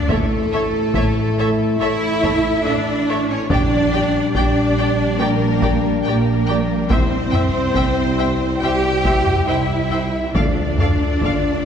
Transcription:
0.09 0.84 A1 medium
0.09 1.80 A3 medium
0.09 3.46 A3 medium
0.09 3.46 E4 medium
0.09 1.80 A4 medium
0.09 0.18 A4 medium
0.09 0.18 C#5 medium
0.09 0.17 E5 medium
0.09 taiko medium
0.52 0.61 A4 medium
0.52 0.60 C#5 medium
0.52 0.61 E5 medium
0.94 1.71 A1 medium
0.94 1.04 A4 medium
0.94 1.04 C#5 medium
0.94 1.04 E5 medium
0.94 taiko medium
1.38 1.47 A4 medium
1.38 1.46 C#5 medium
1.38 1.48 E5 medium
1.79 2.56 A1 medium
1.79 2.63 E4 loud
1.79 1.88 A4 medium
1.79 1.88 C#5 medium
1.79 2.64 E5 medium
1.79 1.90 E5 medium
2.22 2.31 A4 medium
2.22 2.30 C#5 medium
2.22 2.32 E5 medium
2.22 taiko medium
2.65 3.40 A1 medium
2.65 3.29 D4 loud
2.65 2.73 A4 medium
2.65 3.29 D5 medium
2.65 2.73 E5 medium
2.65 2.74 E5 medium
3.09 3.17 A4 medium
3.09 3.17 C#5 medium
3.09 3.18 E5 medium
3.29 3.50 C#4 medium
3.29 3.50 C#5 medium
3.50 4.25 A#1 medium
3.50 6.89 G3 medium
3.50 4.33 D4 loud
3.50 6.86 D4 medium
3.50 3.59 G4 medium
3.50 3.59 D5 medium
3.50 4.32 D5 medium
3.50 3.61 G5 medium
3.50 taiko medium
3.93 4.02 G4 medium
3.93 4.01 D5 medium
3.93 4.01 G5 medium
4.33 5.10 A#1 medium
4.33 5.18 D4 medium
4.33 4.44 G4 medium
4.33 5.17 D5 medium
4.33 4.44 D5 medium
4.33 4.44 G5 medium
4.33 taiko medium
4.77 4.87 G4 medium
4.77 4.87 D5 medium
4.77 4.85 G5 medium
5.18 5.96 A#1 medium
5.18 6.03 A#3 loud
5.18 5.28 G4 medium
5.18 6.03 A#4 medium
5.18 5.28 D5 medium
5.18 5.28 G5 medium
5.62 5.71 G4 medium
5.62 5.70 D5 medium
5.62 5.71 G5 medium
5.62 taiko medium
6.05 6.80 A#1 medium
6.05 6.88 A#3 medium
6.05 6.15 G4 medium
6.05 6.88 A#4 medium
6.05 6.15 D5 medium
6.05 6.13 G5 medium
6.47 6.57 G4 medium
6.47 6.57 D5 medium
6.47 6.55 G5 medium
6.89 7.65 C2 medium
6.89 10.19 G3 medium
6.89 8.61 C4 medium
6.89 10.19 E4 medium
6.89 8.59 C5 medium
6.89 6.99 C5 medium
6.89 6.99 E5 medium
6.89 6.98 G5 medium
6.89 taiko medium
7.31 7.42 C5 medium
7.31 7.42 E5 medium
7.31 7.39 G5 medium
7.31 taiko low-mid medium
7.75 8.52 C2 medium
7.75 7.84 C5 medium
7.75 7.83 E5 medium
7.75 7.84 G5 medium
7.75 taiko medium
8.18 8.26 C5 soft
8.18 8.26 E5 medium
8.18 8.27 G5 medium
8.60 9.37 C2 medium
8.60 9.46 G4 loud
8.60 8.71 C5 medium
8.60 8.71 E5 medium
8.60 9.47 G5 medium
8.60 8.71 G5 medium
9.04 9.13 C5 medium
9.04 9.13 E5 medium
9.04 9.14 G5 medium
9.04 taiko medium
9.26 taiko low-mid soft
9.47 10.25 C2 medium
9.47 10.34 E4 medium
9.47 9.55 C5 medium
9.47 10.35 E5 medium
9.47 9.55 E5 medium
9.47 9.56 G5 medium
9.91 10.00 C5 soft
9.91 9.99 E5 medium
9.91 9.99 G5 soft
10.34 11.13 D2 medium
10.34 11.63 D3 medium
10.34 11.65 A3 medium
10.34 11.65 D4 medium
10.34 11.65 F4 medium
10.34 10.43 A4 medium
10.34 10.42 D5 medium
10.34 11.65 D5 medium
10.34 10.44 F5 medium
10.34 taiko medium
10.78 10.88 A4 medium
10.78 10.88 D5 soft
10.78 10.88 F5 soft
10.78 taiko low-mid medium
11.22 11.65 D2 medium
11.22 11.31 A4 medium
11.22 11.32 D5 medium
11.22 11.33 F5 soft
11.22 taiko medium

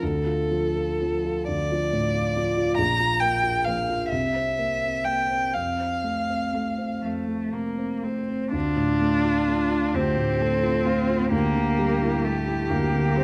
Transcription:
0.02 1.47 D2 soft
0.02 1.47 A4 medium
0.26 0.65 F4 soft
0.51 0.91 F3 soft
0.76 1.16 F4 soft
1.01 1.37 F3 soft
1.01 1.40 F3 soft
1.25 1.62 F4 soft
1.48 2.75 D2 soft
1.48 2.76 D5 medium
1.72 2.06 F3 soft
1.93 2.27 A2 soft
2.15 2.49 F4 soft
2.37 2.68 F3 soft
2.37 2.71 F3 soft
2.57 2.79 F4 soft
2.77 4.07 A#1 soft
2.77 3.21 A#5 medium
3.00 3.34 F4 soft
3.20 3.56 A#3 soft
3.20 3.66 G5 medium
3.44 3.79 F4 soft
3.64 4.00 F3 soft
3.64 4.03 A#3 soft
3.64 4.09 F5 medium
3.89 4.12 F4 soft
4.09 5.51 C2 soft
4.09 5.06 E5 medium
4.36 4.73 C4 soft
4.59 4.96 A#3 soft
4.84 5.21 C4 soft
5.05 5.42 A#3 soft
5.05 5.45 A#3 soft
5.05 5.55 G5 medium
5.30 5.55 C4 soft
5.54 7.01 F2 soft
5.54 7.04 F5 soft
5.80 6.20 C4 soft
6.04 6.44 A3 soft
6.30 6.69 C4 soft
6.53 6.93 A3 soft
6.53 6.91 A3 soft
6.78 7.19 C4 soft
7.02 8.50 F2 soft
7.02 7.55 A3 soft
7.28 7.69 A3 soft
7.52 7.94 C3 soft
7.52 8.05 A#3 soft
7.78 8.19 C4 soft
8.04 8.44 A3 soft
8.04 8.51 C4 soft
8.29 8.54 C4 soft
8.52 9.93 D2 soft
8.52 9.96 D4 medium
8.52 9.96 F4 soft
8.76 9.16 A2 soft
9.01 9.39 A3 soft
9.25 9.63 F4 soft
9.48 9.85 A3 soft
9.71 10.08 F4 soft
9.94 11.28 D2 soft
9.94 11.31 C4 medium
9.94 10.42 G4 soft
10.17 10.54 A2 soft
10.41 10.77 A3 soft
10.41 10.87 A4 soft
10.63 11.00 F4 soft
10.85 11.23 A3 soft
10.85 11.32 F4 soft
11.09 11.33 F4 soft
11.31 12.69 D2 soft
11.31 12.26 A#3 medium
11.31 13.24 G4 medium
11.55 11.93 D3 soft
11.79 12.16 G3 soft
12.02 12.39 E4 soft
12.24 12.62 G3 soft
12.24 12.71 A3 medium
12.48 12.85 E4 soft
12.70 13.24 D2 soft
12.70 13.18 A#3 medium
12.95 13.24 D3 soft
13.16 13.24 G3 soft
13.16 13.24 C4 medium

